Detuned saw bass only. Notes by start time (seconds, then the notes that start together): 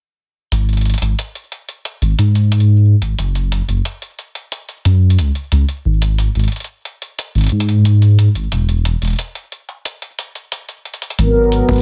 0.52 G#1
1.02 G#1
2.02 G#1
2.19 G#2
3.02 G#1
3.19 F#1
3.68 F#1
4.85 F#2
5.19 C#2
5.52 C#2
5.85 G#1
6.35 G#1
7.35 G#1
7.52 G#2
8.35 G#1
8.52 E1
9.02 E1
11.19 G#1
11.69 G#1